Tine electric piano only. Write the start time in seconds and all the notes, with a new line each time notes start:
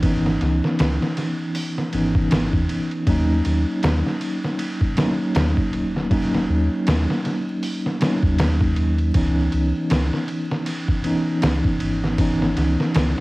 Already playing: E3 B3 C#4 D#4
0.03 E3 B3 C#4 D#4
1.93 E3 B3 C#4 D#4
3.07 F#3 A#3 C#4 D#4
4.97 F#3 A#3 C#4 D#4
6.11 F#3 A#3 C#4 D#4
8.00 F#3 A#3 C#4 D#4
9.14 E3 B3 C#4 D#4
11.04 E3 B3 C#4 D#4
12.18 E3 B3 C#4 D#4